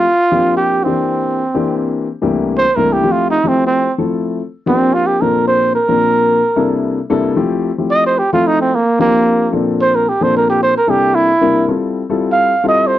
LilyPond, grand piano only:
\new Staff \with { instrumentName = "Grand piano" } { \time 4/4 \key c \mixolydian \tempo 4 = 111 r8 <f bes c' d' g'>4 <e bes c' d' g'>4 r16 <e bes c' d' g'>4 r16 | <c, e a bes d' g'>8. r16 <c, e a bes d' e'>8 <f a c' e' g'>8 r16 <f a c' e' g'>8. r16 <f a c' e' a'>8. | r8 <f bes c' d' g'>4 <bes, f bes c' d' a'>4 r16 <bes, f bes c' d' bes'>4 r16 | <c g bes d' e' a'>8. r16 <c g bes d' e' a'>8 <f a c' e' g'>8 r16 <f a c' e' g'>8. r16 <f a c' e' a'>8. |
r8 <f bes c' d' g'>4 <bes, f bes c' d' a'>4 r16 <bes, f bes c' d' a'>4 r16 | <c g bes d' e' a'>8. r16 <c g bes d' e' bes'>8 <g c' e' f' a'>8 r16 <g c' e' f' a'>8. r16 <g c' e' f' a'>8. | }